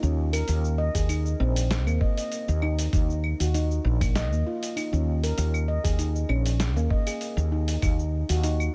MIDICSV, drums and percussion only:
0, 0, Header, 1, 2, 480
1, 0, Start_track
1, 0, Tempo, 612245
1, 376, Time_signature, 4, 2, 24, 8
1, 6858, End_track
2, 0, Start_track
2, 0, Title_t, "Drums"
2, 24, Note_on_c, 9, 82, 36
2, 102, Note_off_c, 9, 82, 0
2, 260, Note_on_c, 9, 46, 54
2, 260, Note_on_c, 9, 75, 76
2, 264, Note_on_c, 9, 82, 65
2, 339, Note_off_c, 9, 46, 0
2, 339, Note_off_c, 9, 75, 0
2, 342, Note_off_c, 9, 82, 0
2, 373, Note_on_c, 9, 46, 43
2, 377, Note_on_c, 9, 82, 61
2, 452, Note_off_c, 9, 46, 0
2, 455, Note_off_c, 9, 82, 0
2, 506, Note_on_c, 9, 82, 32
2, 584, Note_off_c, 9, 82, 0
2, 743, Note_on_c, 9, 36, 61
2, 743, Note_on_c, 9, 46, 53
2, 747, Note_on_c, 9, 82, 69
2, 821, Note_off_c, 9, 36, 0
2, 822, Note_off_c, 9, 46, 0
2, 825, Note_off_c, 9, 82, 0
2, 855, Note_on_c, 9, 46, 40
2, 855, Note_on_c, 9, 75, 67
2, 858, Note_on_c, 9, 82, 54
2, 934, Note_off_c, 9, 46, 0
2, 934, Note_off_c, 9, 75, 0
2, 937, Note_off_c, 9, 82, 0
2, 985, Note_on_c, 9, 82, 34
2, 1064, Note_off_c, 9, 82, 0
2, 1226, Note_on_c, 9, 46, 56
2, 1229, Note_on_c, 9, 82, 75
2, 1304, Note_off_c, 9, 46, 0
2, 1307, Note_off_c, 9, 82, 0
2, 1338, Note_on_c, 9, 38, 75
2, 1338, Note_on_c, 9, 46, 40
2, 1341, Note_on_c, 9, 82, 56
2, 1417, Note_off_c, 9, 38, 0
2, 1417, Note_off_c, 9, 46, 0
2, 1420, Note_off_c, 9, 82, 0
2, 1466, Note_on_c, 9, 75, 76
2, 1469, Note_on_c, 9, 82, 35
2, 1544, Note_off_c, 9, 75, 0
2, 1547, Note_off_c, 9, 82, 0
2, 1575, Note_on_c, 9, 36, 102
2, 1654, Note_off_c, 9, 36, 0
2, 1705, Note_on_c, 9, 46, 56
2, 1708, Note_on_c, 9, 82, 74
2, 1784, Note_off_c, 9, 46, 0
2, 1787, Note_off_c, 9, 82, 0
2, 1816, Note_on_c, 9, 46, 41
2, 1819, Note_on_c, 9, 82, 59
2, 1894, Note_off_c, 9, 46, 0
2, 1897, Note_off_c, 9, 82, 0
2, 1948, Note_on_c, 9, 82, 36
2, 2026, Note_off_c, 9, 82, 0
2, 2055, Note_on_c, 9, 75, 80
2, 2133, Note_off_c, 9, 75, 0
2, 2184, Note_on_c, 9, 46, 54
2, 2187, Note_on_c, 9, 82, 70
2, 2263, Note_off_c, 9, 46, 0
2, 2266, Note_off_c, 9, 82, 0
2, 2296, Note_on_c, 9, 46, 41
2, 2297, Note_on_c, 9, 36, 116
2, 2300, Note_on_c, 9, 82, 55
2, 2375, Note_off_c, 9, 36, 0
2, 2375, Note_off_c, 9, 46, 0
2, 2378, Note_off_c, 9, 82, 0
2, 2430, Note_on_c, 9, 82, 33
2, 2509, Note_off_c, 9, 82, 0
2, 2538, Note_on_c, 9, 75, 77
2, 2617, Note_off_c, 9, 75, 0
2, 2667, Note_on_c, 9, 46, 54
2, 2670, Note_on_c, 9, 82, 70
2, 2745, Note_off_c, 9, 46, 0
2, 2749, Note_off_c, 9, 82, 0
2, 2778, Note_on_c, 9, 46, 37
2, 2782, Note_on_c, 9, 82, 52
2, 2857, Note_off_c, 9, 46, 0
2, 2860, Note_off_c, 9, 82, 0
2, 2910, Note_on_c, 9, 82, 32
2, 2988, Note_off_c, 9, 82, 0
2, 3145, Note_on_c, 9, 36, 101
2, 3146, Note_on_c, 9, 46, 56
2, 3146, Note_on_c, 9, 75, 81
2, 3149, Note_on_c, 9, 82, 67
2, 3224, Note_off_c, 9, 36, 0
2, 3225, Note_off_c, 9, 46, 0
2, 3225, Note_off_c, 9, 75, 0
2, 3228, Note_off_c, 9, 82, 0
2, 3258, Note_on_c, 9, 38, 72
2, 3258, Note_on_c, 9, 46, 40
2, 3261, Note_on_c, 9, 82, 53
2, 3336, Note_off_c, 9, 38, 0
2, 3336, Note_off_c, 9, 46, 0
2, 3339, Note_off_c, 9, 82, 0
2, 3391, Note_on_c, 9, 82, 34
2, 3469, Note_off_c, 9, 82, 0
2, 3627, Note_on_c, 9, 46, 54
2, 3630, Note_on_c, 9, 82, 70
2, 3706, Note_off_c, 9, 46, 0
2, 3709, Note_off_c, 9, 82, 0
2, 3738, Note_on_c, 9, 46, 43
2, 3738, Note_on_c, 9, 75, 80
2, 3742, Note_on_c, 9, 82, 55
2, 3817, Note_off_c, 9, 46, 0
2, 3817, Note_off_c, 9, 75, 0
2, 3820, Note_off_c, 9, 82, 0
2, 3869, Note_on_c, 9, 82, 34
2, 3947, Note_off_c, 9, 82, 0
2, 4105, Note_on_c, 9, 46, 51
2, 4108, Note_on_c, 9, 82, 64
2, 4183, Note_off_c, 9, 46, 0
2, 4186, Note_off_c, 9, 82, 0
2, 4215, Note_on_c, 9, 46, 46
2, 4218, Note_on_c, 9, 82, 55
2, 4293, Note_off_c, 9, 46, 0
2, 4296, Note_off_c, 9, 82, 0
2, 4344, Note_on_c, 9, 75, 78
2, 4347, Note_on_c, 9, 82, 29
2, 4422, Note_off_c, 9, 75, 0
2, 4426, Note_off_c, 9, 82, 0
2, 4582, Note_on_c, 9, 36, 61
2, 4583, Note_on_c, 9, 46, 56
2, 4586, Note_on_c, 9, 82, 70
2, 4661, Note_off_c, 9, 36, 0
2, 4661, Note_off_c, 9, 46, 0
2, 4664, Note_off_c, 9, 82, 0
2, 4694, Note_on_c, 9, 46, 42
2, 4697, Note_on_c, 9, 82, 53
2, 4773, Note_off_c, 9, 46, 0
2, 4776, Note_off_c, 9, 82, 0
2, 4826, Note_on_c, 9, 82, 32
2, 4904, Note_off_c, 9, 82, 0
2, 4933, Note_on_c, 9, 75, 81
2, 5012, Note_off_c, 9, 75, 0
2, 5061, Note_on_c, 9, 46, 55
2, 5064, Note_on_c, 9, 82, 69
2, 5140, Note_off_c, 9, 46, 0
2, 5143, Note_off_c, 9, 82, 0
2, 5172, Note_on_c, 9, 38, 73
2, 5172, Note_on_c, 9, 46, 41
2, 5175, Note_on_c, 9, 82, 51
2, 5251, Note_off_c, 9, 38, 0
2, 5251, Note_off_c, 9, 46, 0
2, 5254, Note_off_c, 9, 82, 0
2, 5305, Note_on_c, 9, 82, 33
2, 5383, Note_off_c, 9, 82, 0
2, 5413, Note_on_c, 9, 36, 97
2, 5492, Note_off_c, 9, 36, 0
2, 5541, Note_on_c, 9, 46, 56
2, 5541, Note_on_c, 9, 75, 82
2, 5544, Note_on_c, 9, 82, 70
2, 5619, Note_off_c, 9, 46, 0
2, 5619, Note_off_c, 9, 75, 0
2, 5622, Note_off_c, 9, 82, 0
2, 5652, Note_on_c, 9, 46, 48
2, 5655, Note_on_c, 9, 82, 52
2, 5730, Note_off_c, 9, 46, 0
2, 5734, Note_off_c, 9, 82, 0
2, 5784, Note_on_c, 9, 82, 33
2, 5863, Note_off_c, 9, 82, 0
2, 6020, Note_on_c, 9, 46, 57
2, 6024, Note_on_c, 9, 82, 62
2, 6099, Note_off_c, 9, 46, 0
2, 6102, Note_off_c, 9, 82, 0
2, 6134, Note_on_c, 9, 46, 47
2, 6134, Note_on_c, 9, 75, 82
2, 6135, Note_on_c, 9, 36, 109
2, 6137, Note_on_c, 9, 82, 58
2, 6212, Note_off_c, 9, 46, 0
2, 6212, Note_off_c, 9, 75, 0
2, 6213, Note_off_c, 9, 36, 0
2, 6215, Note_off_c, 9, 82, 0
2, 6266, Note_on_c, 9, 82, 29
2, 6344, Note_off_c, 9, 82, 0
2, 6501, Note_on_c, 9, 46, 60
2, 6504, Note_on_c, 9, 82, 64
2, 6580, Note_off_c, 9, 46, 0
2, 6583, Note_off_c, 9, 82, 0
2, 6613, Note_on_c, 9, 46, 46
2, 6616, Note_on_c, 9, 82, 51
2, 6691, Note_off_c, 9, 46, 0
2, 6694, Note_off_c, 9, 82, 0
2, 6743, Note_on_c, 9, 75, 79
2, 6746, Note_on_c, 9, 82, 33
2, 6821, Note_off_c, 9, 75, 0
2, 6824, Note_off_c, 9, 82, 0
2, 6858, End_track
0, 0, End_of_file